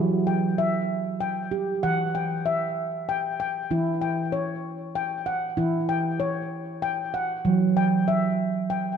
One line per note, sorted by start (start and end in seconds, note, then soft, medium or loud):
0.00 1.80 E3 medium
0.00 0.58 F#3 medium
0.27 1.19 G5 medium
0.58 1.21 E5 medium
1.21 1.83 G5 medium
1.51 2.45 G4 medium
1.83 3.67 E3 medium
1.83 2.46 F#5 medium
2.15 3.08 G5 medium
2.46 3.08 E5 medium
3.09 3.39 G5 medium
3.40 4.00 G5 medium
3.71 5.54 E3 medium
3.71 4.33 E4 medium
4.01 4.94 G5 medium
4.32 4.95 C#5 medium
4.95 5.58 G5 medium
5.26 6.20 F#5 medium
5.57 7.41 E3 medium
5.57 6.20 E4 medium
5.89 6.81 G5 medium
6.20 6.82 C#5 medium
6.82 7.45 G5 medium
7.14 7.76 F#5 medium
7.45 8.97 E3 medium
7.45 8.07 F#3 medium
7.77 8.69 G5 medium
8.08 8.70 E5 medium
8.70 8.97 G5 medium